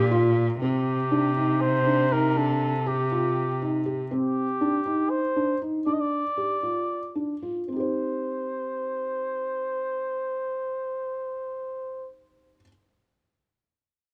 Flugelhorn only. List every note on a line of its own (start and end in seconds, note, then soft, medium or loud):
0.61 1.63 G4 medium
1.61 2.14 C5 medium
2.12 2.39 A#4 medium
2.37 2.89 A4 medium
2.88 3.87 G4 medium
4.12 5.12 G4 medium
5.10 5.61 C5 medium
5.87 5.95 D5 medium
5.93 6.02 D#5 medium
6.01 7.16 D5 medium
7.68 12.10 C5 medium